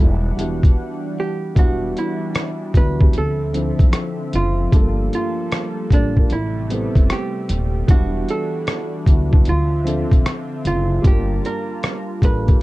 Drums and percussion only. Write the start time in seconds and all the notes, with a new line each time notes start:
0.39 closed hi-hat
0.63 kick, closed hi-hat
1.56 kick, closed hi-hat
1.97 closed hi-hat
2.35 cross-stick, closed hi-hat
2.74 kick, closed hi-hat
3.01 kick
3.13 closed hi-hat
3.54 closed hi-hat
3.79 kick, closed hi-hat
3.93 cross-stick, closed hi-hat
4.33 closed hi-hat
4.72 kick, closed hi-hat
5.13 closed hi-hat
5.52 cross-stick, closed hi-hat
5.91 kick, closed hi-hat
6.17 kick
6.30 closed hi-hat
6.70 closed hi-hat
6.95 kick, closed hi-hat
7.10 cross-stick, closed hi-hat
7.49 closed hi-hat
7.88 kick, closed hi-hat
8.29 closed hi-hat
8.67 cross-stick, closed hi-hat
9.06 kick, closed hi-hat
9.33 kick
9.45 closed hi-hat
9.87 closed hi-hat
10.12 kick, closed hi-hat
10.26 cross-stick, closed hi-hat
10.65 closed hi-hat
11.04 kick, closed hi-hat
11.45 closed hi-hat
11.83 cross-stick, closed hi-hat
12.22 kick, closed hi-hat
12.48 kick, closed hi-hat